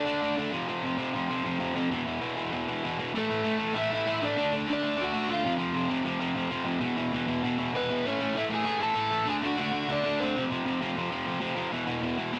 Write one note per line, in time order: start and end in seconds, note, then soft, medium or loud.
0.00 0.34 D4 medium
0.00 0.34 D5 medium
0.05 0.21 D3 loud
0.05 0.21 A3 medium
0.05 0.20 D4 loud
0.21 0.36 D3 medium
0.21 0.37 A3 medium
0.21 0.38 D4 medium
0.37 0.51 D3 loud
0.37 0.52 A3 loud
0.37 0.52 D4 loud
0.52 0.68 F2 medium
0.52 0.68 C3 loud
0.52 0.67 F3 loud
0.68 0.82 F2 medium
0.68 0.83 C3 loud
0.68 0.84 F3 loud
0.83 0.97 F2 medium
0.83 0.97 C3 medium
0.83 0.96 F3 medium
0.98 1.13 F2 medium
0.98 1.14 C3 loud
0.98 1.14 F3 loud
1.14 1.29 F2 medium
1.14 1.29 C3 medium
1.14 1.28 F3 loud
1.29 1.43 F2 medium
1.29 1.44 C3 medium
1.29 1.44 F3 loud
1.44 1.59 F2 medium
1.44 1.58 C3 medium
1.44 1.58 F3 medium
1.59 1.74 F2 loud
1.59 1.74 C3 loud
1.59 1.75 F3 loud
1.75 1.89 F2 medium
1.75 1.90 C3 medium
1.75 1.90 F3 loud
1.90 2.06 E2 medium
1.90 2.05 B2 loud
1.90 2.05 E3 loud
2.06 2.19 E2 medium
2.06 2.20 B2 medium
2.06 2.21 E3 medium
2.21 2.36 E2 loud
2.21 2.35 B2 loud
2.21 2.34 E3 loud
2.36 2.50 E2 medium
2.36 2.51 B2 medium
2.36 2.51 E3 medium
2.51 2.68 E2 medium
2.51 2.67 B2 medium
2.51 2.66 E3 loud
2.67 2.82 E2 medium
2.67 2.83 B2 medium
2.67 2.83 E3 medium
2.83 2.98 E2 medium
2.83 2.98 B2 loud
2.83 2.97 E3 loud
2.98 3.13 E2 medium
2.98 3.13 B2 medium
2.98 3.13 E3 medium
3.15 3.30 A2 medium
3.15 3.29 E3 loud
3.15 3.29 A3 medium
3.15 3.73 A3 medium
3.15 3.79 A4 medium
3.29 3.42 A2 medium
3.29 3.43 E3 medium
3.29 3.45 A3 medium
3.44 3.58 A2 medium
3.44 3.58 E3 loud
3.44 3.58 A3 loud
3.58 3.72 A2 medium
3.58 3.73 E3 medium
3.58 3.75 A3 medium
3.73 3.90 A2 medium
3.73 3.89 E3 loud
3.73 3.89 A3 loud
3.73 3.90 E4 medium
3.78 3.91 E5 medium
3.90 4.04 A2 medium
3.90 4.05 E3 medium
3.90 4.07 A3 medium
3.90 4.20 E4 medium
3.94 4.24 E5 loud
4.06 4.21 A2 loud
4.06 4.20 E3 loud
4.06 4.20 A3 loud
4.21 4.36 A2 medium
4.21 4.36 E3 medium
4.21 4.38 A3 medium
4.21 4.50 D4 medium
4.25 4.52 D5 medium
4.37 4.52 D3 medium
4.37 4.53 A3 medium
4.37 4.51 D4 medium
4.52 4.65 D3 medium
4.52 4.67 A3 medium
4.52 4.67 D4 medium
4.66 4.82 D3 medium
4.66 4.82 A3 medium
4.66 4.81 D4 loud
4.66 4.97 D4 medium
4.73 5.02 D5 medium
4.82 4.96 D3 medium
4.82 4.96 A3 medium
4.82 4.97 D4 loud
4.97 5.13 D3 loud
4.97 5.13 A3 loud
4.97 5.12 D4 loud
5.01 5.28 F#4 medium
5.01 5.30 F#5 loud
5.13 5.27 D3 medium
5.13 5.28 A3 medium
5.13 5.29 D4 medium
5.28 5.43 D3 medium
5.28 5.43 A3 loud
5.28 5.44 D4 loud
5.28 5.51 F4 medium
5.28 5.52 F5 medium
5.45 5.58 F2 loud
5.45 5.58 C3 loud
5.45 5.57 F3 loud
5.58 5.72 F2 medium
5.58 5.73 C3 medium
5.58 5.75 F3 medium
5.74 5.90 F2 medium
5.74 5.89 C3 medium
5.74 5.88 F3 medium
5.89 6.03 F2 medium
5.89 6.04 C3 loud
5.89 6.04 F3 loud
6.04 6.20 F2 medium
6.04 6.19 C3 medium
6.04 6.19 F3 medium
6.20 6.34 F2 medium
6.20 6.35 C3 loud
6.20 6.36 F3 loud
6.35 6.51 F2 medium
6.35 6.50 C3 medium
6.35 6.49 F3 medium
6.50 6.63 F2 medium
6.50 6.64 C3 loud
6.50 6.65 F3 medium
6.65 6.80 F2 medium
6.65 6.80 C3 medium
6.65 6.80 F3 medium
6.80 6.96 E2 medium
6.80 6.96 B2 medium
6.80 6.96 E3 loud
6.96 7.11 E2 medium
6.96 7.12 B2 medium
6.96 7.14 E3 medium
7.13 7.26 E2 medium
7.13 7.27 B2 loud
7.13 7.25 E3 loud
7.27 7.42 E2 medium
7.27 7.42 B2 medium
7.27 7.43 E3 medium
7.43 7.58 E2 loud
7.43 7.58 B2 loud
7.43 7.57 E3 medium
7.58 7.72 E2 medium
7.58 7.72 B2 medium
7.58 7.73 E3 medium
7.73 7.90 E2 medium
7.73 7.89 B2 loud
7.73 7.88 E3 medium
7.73 8.04 B3 medium
7.73 8.07 B4 medium
7.89 8.05 E2 medium
7.89 8.04 B2 medium
7.89 8.04 E3 medium
8.04 8.20 A2 medium
8.04 8.19 E3 medium
8.04 8.20 A3 medium
8.04 8.35 C#4 medium
8.04 8.38 C#5 medium
8.20 8.33 A2 medium
8.20 8.34 E3 medium
8.20 8.35 A3 medium
8.34 8.50 A2 medium
8.34 8.49 E3 loud
8.34 8.49 A3 loud
8.34 8.42 E4 medium
8.34 8.43 E5 medium
8.49 8.63 A2 medium
8.49 8.64 E3 medium
8.49 8.66 A3 loud
8.54 8.81 G#4 medium
8.54 8.82 G#5 loud
8.64 8.80 A2 medium
8.64 8.79 E3 loud
8.64 8.79 A3 loud
8.79 8.93 A2 medium
8.79 8.94 E3 medium
8.79 8.95 A3 medium
8.79 9.29 A5 loud
8.84 9.26 A4 medium
8.95 9.11 A2 loud
8.95 9.10 E3 loud
8.95 9.11 A3 medium
9.11 9.26 A2 medium
9.11 9.26 E3 medium
9.11 9.27 A3 medium
9.26 9.42 D3 medium
9.26 9.42 A3 medium
9.26 9.41 D4 medium
9.26 9.35 G#4 medium
9.26 9.34 G#5 medium
9.42 9.56 D3 medium
9.42 9.58 A3 medium
9.42 9.57 D4 medium
9.42 9.59 F#4 medium
9.46 9.60 F#5 medium
9.57 9.71 D3 loud
9.57 9.71 A3 loud
9.57 9.71 D4 medium
9.57 9.91 F#5 medium
9.62 9.89 F#4 medium
9.72 9.87 D3 medium
9.72 9.88 A3 medium
9.72 9.88 D4 medium
9.88 10.04 D3 medium
9.88 10.03 A3 medium
9.88 10.02 D4 loud
9.88 10.22 D5 medium
9.93 10.20 D4 medium
10.04 10.19 D3 medium
10.04 10.20 A3 medium
10.04 10.21 D4 medium
10.20 10.35 D3 loud
10.20 10.35 A3 loud
10.20 10.42 C4 medium
10.20 10.35 D4 loud
10.20 10.41 C5 medium
10.35 10.50 F2 medium
10.35 10.49 C3 loud
10.35 10.48 F3 loud
10.50 10.63 F2 medium
10.50 10.64 C3 medium
10.50 10.65 F3 loud
10.64 10.81 F2 medium
10.64 10.80 C3 medium
10.64 10.80 F3 medium
10.81 10.95 F2 medium
10.81 10.96 C3 loud
10.81 10.97 F3 loud
10.96 11.11 F2 medium
10.96 11.11 C3 medium
10.96 11.10 F3 loud
11.11 11.25 F2 medium
11.11 11.26 C3 medium
11.11 11.27 F3 loud
11.26 11.41 F2 medium
11.26 11.40 C3 medium
11.26 11.40 F3 medium
11.41 11.55 F2 medium
11.41 11.55 C3 loud
11.41 11.56 F3 loud
11.56 11.71 F2 medium
11.56 11.71 C3 medium
11.56 11.72 F3 loud
11.71 11.86 E2 medium
11.71 11.86 B2 medium
11.71 11.85 E3 loud
11.86 12.00 E2 medium
11.86 12.01 B2 medium
11.86 12.02 E3 medium
12.01 12.18 E2 medium
12.01 12.17 B2 loud
12.01 12.16 E3 loud
12.18 12.31 E2 medium
12.18 12.32 B2 medium
12.18 12.33 E3 loud
12.32 12.39 E2 medium
12.32 12.39 B2 loud
12.32 12.39 E3 loud